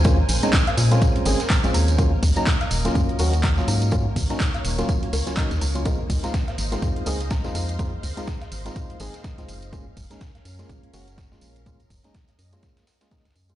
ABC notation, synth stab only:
X:1
M:4/4
L:1/16
Q:"Swing 16ths" 1/4=124
K:Db
V:1 name="Synth stab"
[A,CDF] z2 [A,CDE] z3 [A,CDF]3 [A,CDA] z2 [A,CDF]3 | [G,B,DF] z2 [G,B,DE] z3 [G,B,DF]3 [G,B,DG] z2 [G,B,DF]3 | [G,B,DF] z2 [G,B,DE] z3 [G,B,DF]3 z [G,B,DF] [G,B,DE] z2 [G,B,DF] | [A,CEF] z2 [A,CEF] z3 [A,CEF]3 [A,CEA] z2 [A,CEF]3 |
[A,CEF] z2 [A,CEF] z3 [A,CEF]3 [A,CEA] z2 [A,CEF]3 | [A,B,DF] z2 [A,B,DE] z3 [A,B,DF]3 [A,B,DG] z2 [A,B,DF]3 | [A,B,DF] z2 [A,B,DE] z3 [A,B,DF]3 z [A,B,DF] [A,B,DE] z2 [A,B,DF] |]